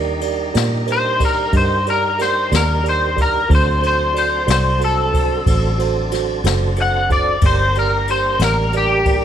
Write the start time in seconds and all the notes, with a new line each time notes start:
Already playing: D#2 G3 D4 D#4 G4 A#4 D5
0.21 G4 A#4 D5, ride
0.53 A#2 G4 A#4 D5, snare, ride
0.87 G4 A#4 C5, ride
0.92 C5
1.20 G4 A#4 D5, kick, ride
1.25 A#4
1.53 G2 G4 A#4 D#5, kick, ride
1.57 C5
1.86 G4 A#4 D5, ride
2.19 G4 A#4 C5 D5, snare, ride
2.51 D#2 G4 A#4 D5, snare, ride
2.56 A#4
2.83 G4 A#4 D5, ride
2.89 C5
3.15 G4 A#4 D5, kick, ride
3.22 A#4
3.48 D2 F#3 C4 D4 F#4 A4 C5, kick, ride
3.55 C5
3.81 F#4 A4 C5, ride
3.87 C5
4.13 F#4 A4 D5, ride
4.18 C5
4.46 C2 F#4 A4 D5, ride
4.50 C5, snare
4.80 F#4 A4 C5, ride
4.85 A4
5.13 F#4 A4 C5, kick, ride
5.46 A1 F#4 A4 C5, kick, ride
5.78 F#4 A4 C5, ride
6.12 F#4 A4 C5, snare, ride
6.44 F#1 F#4 A4 C5, snare, ride
6.76 F#4 A4 C5, ride
6.81 F#5
7.10 F#4 A4 C5 D5, kick, ride
7.41 G1 G3 A#3 D4 G4 A#4 D5, kick, ride
7.46 C5
7.75 G4 A#4 D5, ride
8.08 G4 A#4 C5, ride
8.39 A1 G4 A#4 D5, snare, ride
8.44 A#4
8.73 G4 A#4 D5, ride
8.77 G4
9.05 G4 A#4 D5, kick, ride